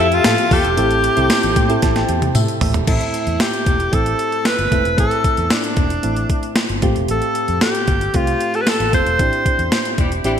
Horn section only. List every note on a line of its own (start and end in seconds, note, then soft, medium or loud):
0.25 0.36 A3 medium
0.25 0.36 F4 medium
0.25 0.36 A4 medium
0.51 0.68 A3 medium
0.51 0.68 F4 medium
0.51 0.68 A4 loud
9.98 10.09 G3 medium
9.98 10.09 D4 medium
9.98 10.09 E4 medium
9.98 10.09 G4 medium
10.25 10.33 G3 medium
10.25 10.33 D4 medium
10.25 10.33 E4 medium
10.25 10.33 G4 medium